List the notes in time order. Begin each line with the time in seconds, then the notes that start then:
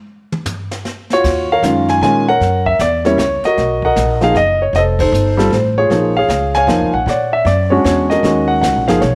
0.32 mid tom
0.46 floor tom, hi-hat pedal
0.71 snare
0.85 snare
1.10 F4 F#4 C#5, snare
1.24 D#2, brush sweep, kick, snare, crash
1.52 A#4 C#5 F5
1.62 F#2 D#3 G#3 C#4 F4, snare, hi-hat pedal
1.89 G#5, snare
2.01 A#2 D#3 G#3 C#4 F4 G#5, snare
2.28 A#4 C#5 F#5
2.40 F#2, brush sweep, snare
2.66 E5, kick
2.79 E2 D5, snare, hi-hat pedal
3.05 G3 A#3 C#4 E4 C#5, snare
3.18 C#2 C#5, snare, hi-hat pedal
3.43 F#4 A#4 D#5, muted upright bass stroke, snare
3.57 B1, brush sweep, snare
3.82 A#4 D#5 F#5, kick
3.96 A#1, snare, hi-hat pedal
4.21 F3 A#3 D#4 G#4 F5, snare
4.35 F#1 D#5, snare
4.62 C#5
4.73 F1 D#5, brush sweep, snare
4.77 A4 C5
4.99 D#4 A4 C5, kick, crash
5.12 G1, hi-hat pedal
5.37 G3 C4 F4 A4, snare
5.50 A1 C5, snare
5.78 F4 G#4 C#5
5.90 A#1 F3 A#3 D#4 G#4, brush sweep, snare
6.17 G#4 C#5 F5
6.28 C#2, snare, hi-hat pedal
6.54 C#5 F5 G#5, snare
6.67 F2 F3 A#3 D#4 F4, snare
6.80 C#2
6.93 A#1 F#5
7.06 A#2 C#5 D5 F#5, brush sweep, snare
7.33 E5
7.45 F#2 D5, snare
7.70 G#3 C#4 D4 F#4 C#5
7.84 E2 C#5, snare, hi-hat pedal
8.10 F#4 A#4 D#5, snare
8.23 D#2 D#3 G#3 C#4 F#4, brush sweep, snare
8.48 F#5
8.61 C#2 F#5, snare, hi-hat pedal
8.75 A#1
8.88 F#1 F3 A#3 D#4 G#4 F5, snare
9.01 B1 C#5, snare